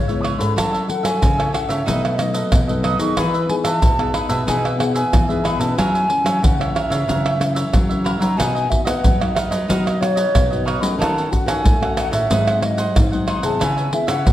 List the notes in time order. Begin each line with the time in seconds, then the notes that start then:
Already playing: G#2 C#3 C#5
0.08 G#3 B3 E4 B4 C#5 E5, pandeiro, shaker
0.21 E4 B4 C#5 C#6 D#6, pandeiro, tamborim
0.25 E5
0.38 G#2 C#4 E4 A4 B4 C#5 E5 B5, pandeiro, shaker
0.56 F#3 F#4 A4 C#5 E5 A5, pandeiro, tamborim, shaker, surdo
0.73 A4 C#5 E5, pandeiro, shaker
0.88 C#4 E4 A4 F#5, muted cavaquinho stroke, pandeiro
1.03 F#3 A4 C#5 E5 G#5, pandeiro, tamborim, shaker
1.22 C#3, pandeiro, shaker, surdo
1.38 C#4 E4 A4 C#5 E5, pandeiro, tamborim, shaker
1.52 F#4 A4 C#5 E5 F#5, pandeiro, tamborim
1.68 C#3 A4 C#5 E5, pandeiro, shaker
1.86 B2 F#3 A3 D#4 A4 B4 D#5, pandeiro, shaker, surdo
2.02 A4 B4 D#5, pandeiro, tamborim, shaker
2.17 F#3 A3 D#4 D#5, muted cavaquinho stroke, pandeiro, tamborim, shaker
2.34 A4 B4 D#5, pandeiro, shaker
2.52 F#2 B2, pandeiro, tamborim, shaker, surdo
2.68 F#3 A3 D#4 A4 B4 D#5, pandeiro, shaker
2.83 D#4 A4 B4 D#5 D#6, pandeiro, tamborim
2.98 D#3 B3 D#4 G#4 A4 B4 D#5 C#6, pandeiro, shaker
3.16 E3 D#4 G#4 B4 E5 B5, pandeiro, tamborim, shaker, surdo
3.34 G#4 B4 E5, pandeiro, shaker
3.49 B3 D#4 G#4 G#5, muted cavaquinho stroke, pandeiro
3.64 E3 B4 E5 A5, pandeiro, tamborim, shaker
3.82 B2, pandeiro, shaker, surdo
3.98 B3 D#4 G#4 B4 E5, pandeiro, tamborim, shaker
4.14 D#4 G#4 B4 E5 B5, pandeiro, tamborim
4.29 B2 G#4 B4 E5 A5, pandeiro, shaker
4.47 B2 E3 B3 D#4 G#4 B4 E5 G#5, pandeiro, shaker, surdo
4.64 G#4 B4 E5, pandeiro, tamborim, shaker
4.78 B3 D#4 G#4 F#5, muted cavaquinho stroke, pandeiro, tamborim
4.94 G#4 B4 E5 G#5, pandeiro, shaker
5.12 B2 E3, pandeiro, tamborim, shaker, surdo
5.29 B3 D#4 G#4 B4 E5, pandeiro, shaker
5.44 D#4 G#4 B4 E5 B5, pandeiro, tamborim
5.59 B2 E3 A#3 C#4 G#4 B4 E5 A5, pandeiro, shaker
5.77 F#2 F#3 F#4 A#4 C#5 E5 G#5, pandeiro, tamborim, shaker, surdo
5.94 A#4 C#5 E5, pandeiro, shaker
6.08 E3 A#3 C#4, muted cavaquinho stroke, pandeiro
6.24 F#3 A#4 C#5 E5, pandeiro, tamborim, shaker
6.42 C#3 F#5, pandeiro, shaker, surdo
6.59 E3 A#3 C#4 A#4 C#5 E5, pandeiro, tamborim, shaker
6.75 F#4 A#4 C#5 E5, pandeiro, tamborim
6.90 C#3 A#4 C#5 E5, pandeiro, shaker
7.07 F#2 C#3 E3 A#3 C#4 F#4 A#4 C#5 E5, pandeiro, shaker, surdo
7.25 A#4 C#5 E5, pandeiro, tamborim, shaker
7.39 E3 A#3 C#4, muted cavaquinho stroke, pandeiro, tamborim, shaker
7.55 A#4 C#5 E5, pandeiro, shaker
7.73 C#3 F#3, pandeiro, tamborim, shaker, surdo
7.89 E3 A#3 C#4 A#4 C#5 E5, pandeiro, shaker
8.04 F#4 A#4 C#5 E5 B5, pandeiro, tamborim
8.19 F#3 A#3 D#4 F#4 A#4 C#5 E5 A#5, pandeiro, shaker
8.37 B2 D#4 A#4 B4 D#5 G#5, pandeiro, tamborim, shaker, surdo
8.55 A#4 B4 D#5, pandeiro, shaker
8.69 A#3 D#4 F#4 E5, muted cavaquinho stroke, pandeiro, surdo
8.84 B3 A#4 B4 D#5 F#5, pandeiro, tamborim, shaker
9.04 F#2 F#3, pandeiro, shaker, surdo
9.20 A#3 D#4 F#4 A#4 B4 D#5, pandeiro, tamborim, shaker
9.35 D#4 A#4 B4 D#5 E5, pandeiro, tamborim, shaker
9.50 F#3 A#4 B4 D#5, pandeiro, shaker
9.68 B2 F#3 A#3 D#4 F#4 A#4 B4 D#5, pandeiro, shaker, surdo
9.85 A#4 B4 D#5, pandeiro, tamborim, shaker
10.00 A#3 D#4 F#4 C#5, muted cavaquinho stroke, pandeiro, tamborim, shaker
10.16 A#4 B4 D#5, pandeiro, shaker
10.34 F#2 B2, pandeiro, tamborim, shaker, surdo
10.50 A#3 D#4 F#4 A#4 B4 D#5, pandeiro, shaker
10.65 D#4 A#4 B4 D#5 C#6, pandeiro, tamborim
10.81 F#3 A3 C#4 F#4 A#4 B4 D#5 B5, pandeiro, shaker
10.98 D#3 D#4 A4 C#5 F#5 A5, pandeiro, tamborim, shaker, surdo
11.16 A4 C#5 F#5, pandeiro, shaker
11.31 A3 C#4 F#4 F#5, muted cavaquinho stroke, pandeiro, shaker, surdo
11.46 D#3 A4 C#5 F#5 G#5, pandeiro, tamborim, shaker
11.64 D#3 A3, pandeiro, shaker, surdo
11.81 A3 C#4 F#4 A4 C#5 F#5, pandeiro, tamborim, shaker
11.97 D#4 A4 C#5 F#5, pandeiro, tamborim, shaker
12.11 A2 A4 C#5 E5 F#5, pandeiro, shaker
12.29 G#2 F#3 C4 D#4 G#4 C5 F#5, pandeiro, shaker, surdo
12.47 G#4 C5 F#5, pandeiro, tamborim, shaker
12.62 F#3 C4 D#4 D#5, muted cavaquinho stroke, pandeiro, tamborim
12.77 G#4 C5 F#5, pandeiro, shaker
12.95 G#2 D#3, pandeiro, tamborim, shaker, surdo
13.12 F#3 C4 D#4 G#4 C5 F#5, pandeiro, shaker
13.27 D#4 G#4 C5 F#5 C6, pandeiro, tamborim
13.42 C3 B3 E4 G#4 C5 F#5 A5, pandeiro, shaker
13.59 C#3 E4 B4 C#5 E5, pandeiro, tamborim, shaker, surdo
13.63 G#5
13.76 B4 C#5 E5, pandeiro, shaker
13.92 B3 E4 G#4 E5, muted cavaquinho stroke, pandeiro
14.07 C#3 B4 C#5 E5 F#5, pandeiro, tamborim, shaker
14.25 G#2, pandeiro, shaker, surdo